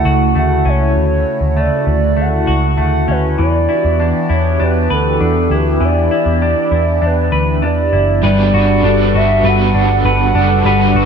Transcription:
Already playing: analog synth pad C#3 A3 E4 F#4, clean electric guitar A3, soft synth lead F#5
0.05 picked electric bass C#2, clean electric guitar F#4
0.35 picked electric bass D2, clean electric guitar A3, soft synth lead F#5
0.65 picked electric bass C#2, clean electric guitar C#4, soft synth lead C#5
0.96 picked electric bass D2
1.41 picked electric bass D2
1.57 clean electric guitar A3, soft synth lead D5
1.87 picked electric bass D2
2.17 picked electric bass D2, clean electric guitar A3
2.21 soft synth lead F#5
2.47 picked electric bass C#2, clean electric guitar F#4
2.77 picked electric bass D2, clean electric guitar A3, soft synth lead F#5
3.08 picked electric bass D2, clean electric guitar C#4, soft synth lead B4
3.38 picked electric bass E2, clean electric guitar E3, analog synth pad E3 B3 D4 G4
3.42 soft synth lead D5
3.69 clean electric guitar E4
3.85 picked electric bass E2
4.00 clean electric guitar D4
4.30 picked electric bass E2, clean electric guitar E4, soft synth lead C#5
4.60 picked electric bass E2, clean electric guitar D4
4.64 soft synth lead B4
4.90 picked electric bass D2, soft synth lead A4, clean electric guitar B4
5.21 picked electric bass E2, clean electric guitar D4
5.50 picked electric bass D2, clean electric guitar E4
5.55 soft synth lead B4
5.80 picked electric bass E2, clean electric guitar E3, analog synth pad E4
5.84 soft synth lead D5
6.11 clean electric guitar E4
6.26 picked electric bass E2
6.42 clean electric guitar D4
6.71 picked electric bass E2, clean electric guitar E4
7.02 picked electric bass E2, clean electric guitar D4
7.06 soft synth lead B4
7.32 picked electric bass D2, clean electric guitar B4
7.62 picked electric bass E2, clean electric guitar D4
7.66 soft synth lead D5
7.93 picked electric bass F#1, clean electric guitar E4
8.22 picked electric bass G1, overdriven electric guitar G3 B3 D4 F#4 B4, clean electric guitar G3 B4, analog synth pad G3 D4 F#4 A4 B4, soft synth lead D5
8.54 picked electric bass G1, clean electric guitar F#4
8.83 picked electric bass G1, overdriven electric guitar B3 D4 F#4, clean electric guitar D4
8.89 overdriven electric guitar B4
9.14 picked electric bass G1, clean electric guitar F#4, soft synth lead E5
9.44 picked electric bass G1, overdriven electric guitar G3 B3 D4 F#4, clean electric guitar B4, soft synth lead F#5
9.48 overdriven electric guitar B4
9.74 picked electric bass G1, clean electric guitar D4
10.05 picked electric bass G1, clean electric guitar B4, soft synth lead F#5
10.34 picked electric bass F#1, clean electric guitar D4, overdriven electric guitar F#4 B4
10.40 overdriven electric guitar D4
10.65 picked electric bass G1, overdriven electric guitar G3 B3 D4 F#4 B4, clean electric guitar G3 B4, soft synth lead F#5
10.95 picked electric bass G1, clean electric guitar F#4

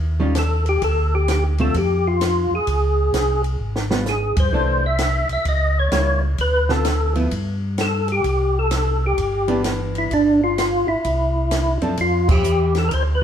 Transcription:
Already playing: tonewheel organ D#2
0.20 hollow-body jazz guitar D#3 G3 C#4 F4
0.35 tonewheel organ A4, snare, hi-hat pedal, ride
0.66 tonewheel organ G4, ride
0.82 tonewheel organ D2 A4, kick, ride
1.15 tonewheel organ G4
1.28 tonewheel organ G4, snare, hi-hat pedal, ride
1.58 hollow-body jazz guitar D3 A3 C4 F4, tonewheel organ A4, ride
1.74 tonewheel organ F2 G4, kick, ride
2.08 tonewheel organ F4
2.21 snare, hi-hat pedal, ride
2.51 tonewheel organ F2
2.55 tonewheel organ G#4
2.67 tonewheel organ C#2, kick, ride
3.13 tonewheel organ C2, snare, hi-hat pedal, ride
3.44 ride
3.59 tonewheel organ G#1
3.76 snare
3.90 hollow-body jazz guitar G3 B3 F4, snare
4.06 tonewheel organ G#4, snare, hi-hat pedal
4.37 tonewheel organ G2 C5, kick, ride
4.52 tonewheel organ C2, hollow-body jazz guitar E3 A3 D4
4.86 tonewheel organ E5
4.98 snare, hi-hat pedal, ride
5.29 tonewheel organ C2 E5, ride
5.45 tonewheel organ C#2 D#5, kick, ride
5.79 tonewheel organ C#5
5.92 tonewheel organ C#2, hollow-body jazz guitar G3 A#3 E4, snare, hi-hat pedal, ride
6.38 tonewheel organ D2 B4, kick, ride
6.69 hollow-body jazz guitar D3 C4 F4 A4, tonewheel organ A4, snare
6.85 snare, hi-hat pedal, ride
7.15 hollow-body jazz guitar F3 B3 E4, ride
7.31 tonewheel organ G2, kick, ride
7.78 tonewheel organ A4, snare, hi-hat pedal, ride
8.08 ride
8.12 tonewheel organ G4
8.24 tonewheel organ C2, kick, ride
8.59 tonewheel organ A4
8.71 snare, hi-hat pedal, ride
9.06 tonewheel organ G4
9.18 tonewheel organ G1, kick, ride
9.48 hollow-body jazz guitar E3 B3 D4, ride
9.64 snare, hi-hat pedal, ride
9.95 tonewheel organ E4, ride
10.11 tonewheel organ G1 D4, kick, ride
10.44 tonewheel organ F4
10.58 tonewheel organ F4, snare, hi-hat pedal, ride
10.88 tonewheel organ G1 E4
11.04 tonewheel organ C2, kick, ride
11.51 snare, hi-hat pedal, ride
11.82 tonewheel organ F#2, hollow-body jazz guitar F3 C4 D4 A4, ride
11.97 tonewheel organ F2 F4, kick, ride
12.29 tonewheel organ G4, kick, crash
12.44 tonewheel organ E2, hi-hat pedal
12.75 tonewheel organ A4, snare, ride
12.89 tonewheel organ D2 A#4, kick, ride
12.94 tonewheel organ C5
13.15 tonewheel organ B4

